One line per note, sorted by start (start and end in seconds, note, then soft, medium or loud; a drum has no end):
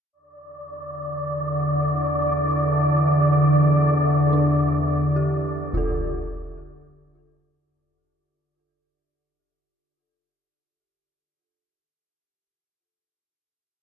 0.13 7.72 E2 medium
0.13 7.72 D3 medium
0.13 7.64 D5 medium
4.33 5.92 D4 soft
5.16 10.79 G4 soft
5.73 11.36 F4 medium
5.73 concert bass drum medium
5.77 11.39 A4 medium